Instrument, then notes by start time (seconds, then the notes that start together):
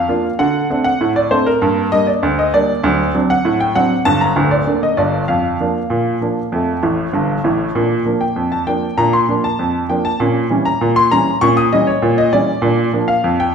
grand piano
Already playing: F5
0.09 A#3 D4 F4
0.39 D3 F#4 F#5
0.70 A3 C4 D4
0.84 F#5
1.01 A2
1.16 D5
1.31 A3 C4 D4 C5
1.46 A#4
1.62 G2 A#3
1.92 G3 A#3 D4 D#5
2.07 D5
2.23 D2
2.39 D#5
2.54 G3 A#3 D4 D5
2.83 D2 F#3
3.14 F#3 C4 D4
3.30 F#5
3.45 A2
3.60 G5
3.75 F#3 C4 D4 F#5
4.05 G1 G2 A5
4.21 A#5
4.36 D1 D2
4.51 D5
4.67 D3 A#3 D4
4.83 D#5
4.97 G1 G2 D5
5.28 F2 F5
5.61 F3 A#3 D4
5.90 A#2
6.21 F3 A#3 D4
6.52 F2 A3
6.83 A1 A2
7.13 G1 G2
7.44 A1 A2
7.75 A#2 D4
8.05 F3 A#3 D4
8.21 G5
8.36 F2
8.52 A5
8.67 F3 A#3 D4 G5
8.98 A#2 D4 A#5
9.13 C6
9.29 F3 A#3 D4
9.44 A5
9.59 F2
9.89 F3 A#3 D4 G5
10.05 A5
10.20 A#2 C#4
10.50 E3 G3 C#4
10.65 A#5
10.81 A#2
10.96 C6
11.12 E3 G3 C#4 A#5
11.41 A#2 C#4 C#6
11.57 D#6
11.73 E3 G3 C#4 D#5
11.87 C#5
12.02 A#2
12.18 D#5
12.33 E3 G3 C#4 D5
12.62 A#2 D4
12.93 F3 A#3 D4
13.08 F5
13.24 F2
13.40 G5